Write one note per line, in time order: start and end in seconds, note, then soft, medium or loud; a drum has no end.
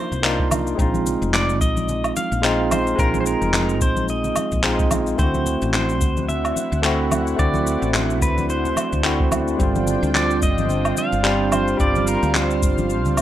0.00 0.19 A#3 medium
0.00 0.20 D4 medium
0.00 0.21 D#4 medium
0.00 0.22 F4 loud
0.00 0.47 C5 loud
0.12 0.73 C2 medium
0.12 kick medium
0.12 shaker soft
0.23 0.75 A#3 medium
0.23 0.76 D4 medium
0.23 0.76 D#4 medium
0.23 0.77 F4 loud
0.23 clap loud
0.23 shaker soft
0.39 kick loud
0.51 high conga medium
0.51 low conga medium
0.51 low woodblock medium
0.51 shaker medium
0.67 shaker soft
0.75 1.15 A#1 loud
0.75 2.39 G#3 medium
0.75 2.40 C4 medium
0.75 kick loud
0.75 shaker soft
0.80 2.41 D#4 medium
0.80 2.42 F4 medium
0.94 high conga loud
0.94 shaker soft
1.06 low conga medium
1.06 shaker medium
1.22 1.61 F1 loud
1.22 shaker soft
1.34 1.61 D5 loud
1.34 clap loud
1.34 high conga medium
1.34 shaker soft
1.49 shaker soft
1.61 2.11 A#1 medium
1.61 2.16 D#5 loud
1.61 kick loud
1.61 shaker medium
1.77 high conga medium
1.77 shaker soft
1.88 low conga medium
1.88 shaker soft
2.04 low woodblock medium
2.04 shaker soft
2.16 2.73 F5 loud
2.16 high conga medium
2.16 shaker medium
2.32 2.93 A#1 medium
2.32 shaker soft
2.42 2.94 G#3 medium
2.42 2.96 C4 medium
2.42 2.96 D#4 medium
2.42 2.97 F4 loud
2.42 clap medium
2.42 shaker soft
2.71 3.00 C5 loud
2.71 high conga loud
2.71 low woodblock medium
2.71 shaker medium
2.87 shaker soft
2.96 3.35 A#1 loud
2.96 4.60 G#3 medium
2.96 4.60 C4 medium
2.96 3.20 A#4 loud
2.96 kick loud
2.96 shaker soft
3.00 4.62 D#4 medium
3.00 4.63 F4 loud
3.14 high conga loud
3.14 shaker soft
3.21 3.27 C5 medium
3.26 3.83 A#4 medium
3.26 shaker medium
3.41 3.81 F1 medium
3.41 shaker soft
3.53 clap loud
3.53 high conga medium
3.53 shaker soft
3.69 shaker soft
3.81 4.31 A#1 medium
3.81 4.09 C5 medium
3.81 kick loud
3.81 shaker medium
3.97 high conga medium
3.97 shaker soft
4.08 4.88 D#5 medium
4.08 shaker soft
4.24 low conga medium
4.24 shaker soft
4.36 high conga medium
4.36 low woodblock medium
4.36 shaker medium
4.52 5.13 A#1 medium
4.52 kick medium
4.52 shaker soft
4.63 5.16 G#3 medium
4.63 5.16 C4 medium
4.63 5.17 D#4 medium
4.63 5.17 F4 loud
4.63 clap loud
4.63 shaker soft
4.79 kick loud
4.79 shaker soft
4.91 high conga loud
4.91 low conga medium
4.91 low woodblock medium
4.91 shaker medium
5.07 shaker soft
5.16 5.55 D2 loud
5.16 6.80 A3 medium
5.16 6.81 C4 medium
5.16 13.22 D4 medium
5.16 9.55 E4 medium
5.16 5.73 C5 medium
5.16 13.22 C5 medium
5.16 9.55 F#5 loud
5.16 kick loud
5.16 shaker soft
5.20 6.82 E4 medium
5.20 6.83 F#4 loud
5.34 high conga medium
5.34 shaker soft
5.46 low conga medium
5.46 shaker medium
5.62 6.02 A1 loud
5.62 shaker soft
5.73 6.31 C5 medium
5.73 clap medium
5.73 high conga medium
5.73 shaker soft
5.89 shaker soft
6.01 6.51 D2 medium
6.01 kick loud
6.01 shaker medium
6.17 high conga medium
6.17 shaker soft
6.29 7.39 E5 loud
6.29 low conga medium
6.29 shaker soft
6.45 low woodblock medium
6.45 shaker soft
6.56 high conga medium
6.56 shaker medium
6.72 7.34 D2 medium
6.72 shaker soft
6.82 7.35 A3 loud
6.82 7.36 C4 medium
6.82 7.37 E4 medium
6.82 7.37 F#4 loud
6.82 clap medium
6.82 shaker soft
7.11 high conga loud
7.11 low woodblock medium
7.11 shaker medium
7.27 shaker soft
7.36 7.75 D2 loud
7.36 9.00 A3 medium
7.36 9.01 C4 medium
7.36 9.02 E4 medium
7.36 7.90 D5 loud
7.36 kick loud
7.36 shaker soft
7.42 9.03 F#4 loud
7.54 high conga loud
7.54 shaker soft
7.67 shaker medium
7.82 8.22 A1 loud
7.82 shaker soft
7.94 clap loud
7.94 high conga medium
7.94 shaker soft
8.10 shaker soft
8.22 8.71 D2 medium
8.22 8.50 B4 loud
8.22 kick loud
8.22 shaker medium
8.38 high conga loud
8.38 shaker soft
8.50 9.28 C5 loud
8.50 shaker soft
8.65 low conga medium
8.65 shaker soft
8.76 high conga medium
8.76 low woodblock medium
8.76 shaker medium
8.93 9.54 D2 medium
8.93 kick medium
8.93 shaker soft
9.03 9.56 A3 medium
9.03 9.57 C4 medium
9.03 9.57 E4 medium
9.03 9.58 F#4 loud
9.03 clap medium
9.03 shaker soft
9.20 kick loud
9.32 high conga medium
9.32 low conga medium
9.32 low woodblock medium
9.32 shaker medium
9.48 shaker soft
9.57 9.95 G1 loud
9.57 11.22 D3 medium
9.57 11.20 G3 medium
9.57 11.21 C4 medium
9.57 13.22 F4 medium
9.57 11.78 G5 medium
9.57 kick loud
9.57 shaker soft
9.63 11.23 F4 loud
9.75 high conga medium
9.75 shaker soft
9.87 low conga medium
9.87 shaker medium
10.03 10.44 D2 loud
10.03 shaker soft
10.15 10.42 D5 loud
10.15 clap loud
10.15 high conga medium
10.15 shaker soft
10.30 shaker soft
10.42 10.92 G1 medium
10.42 10.98 D#5 loud
10.42 kick loud
10.42 shaker medium
10.58 high conga loud
10.58 shaker soft
10.69 low conga medium
10.69 shaker soft
10.85 low woodblock medium
10.85 shaker soft
10.97 11.49 F5 loud
10.97 high conga medium
10.97 shaker medium
11.12 11.74 G1 medium
11.12 shaker soft
11.23 11.76 G3 loud
11.23 11.76 C4 medium
11.23 11.77 D4 medium
11.23 11.78 F4 loud
11.23 clap medium
11.23 shaker soft
11.52 11.80 C5 loud
11.52 high conga medium
11.52 low woodblock medium
11.52 shaker medium
11.68 shaker soft
11.77 12.16 G1 loud
11.77 13.22 G3 medium
11.77 13.22 C4 medium
11.77 12.08 D5 loud
11.77 13.22 F5 loud
11.77 kick loud
11.77 shaker soft
11.81 13.22 D4 medium
11.81 13.22 F4 loud
11.95 high conga medium
11.95 shaker soft
12.07 12.35 A#4 medium
12.07 shaker medium
12.23 12.64 D2 loud
12.23 shaker soft
12.34 13.22 C5 medium
12.34 clap loud
12.34 high conga medium
12.34 shaker soft
12.51 shaker soft
12.62 13.05 G1 medium
12.62 kick loud
12.62 shaker medium
12.78 high conga medium
12.78 shaker soft
12.90 shaker soft
13.05 13.17 D2 loud
13.05 low conga medium
13.05 shaker soft
13.17 13.22 C2 loud
13.17 high conga medium
13.17 low woodblock medium
13.17 shaker medium